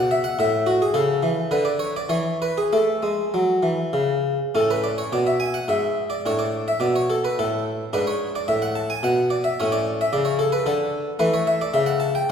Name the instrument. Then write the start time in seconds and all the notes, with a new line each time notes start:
harpsichord
Already playing: B2 F#5
0.11 E5
0.24 F#5
0.39 A2 E5
0.66 F#4
0.82 G#4
0.94 C#3 A4
1.23 E3
1.51 D3 B4
1.65 D5
1.79 C#5
1.96 D5
2.09 E3 C#5
2.42 B4
2.58 G#4
2.73 A3 A4
3.03 G#3
3.34 F#3
3.63 E3
3.93 C#3
4.55 A2 C#4 A4
4.71 B4
4.84 D5
4.98 C#5
5.13 B2 D5
5.27 E5
5.40 G#5
5.54 F#5
5.68 G#2 E5
6.10 D5
6.26 A2 D4 C#5
6.39 D5
6.68 E5
6.80 B2 D5
6.96 C#5
7.10 A4
7.25 B4
7.39 A2 A4
7.93 G#2 D4 B4
8.07 C#5
8.35 D5
8.48 A2 E5
8.62 F#5
8.75 A5
8.90 G#5
9.03 B2 F#5
9.30 D5
9.44 E5
9.60 A2 C#4 C#5
9.72 D5
10.01 E5
10.13 C#3 D5
10.25 C#5
10.39 A4
10.52 B4
10.66 D3 A4
11.19 E3 A3 B4
11.34 C#5
11.47 E5
11.61 D5
11.74 C#3 E5
11.86 F#5
12.00 A5
12.15 G5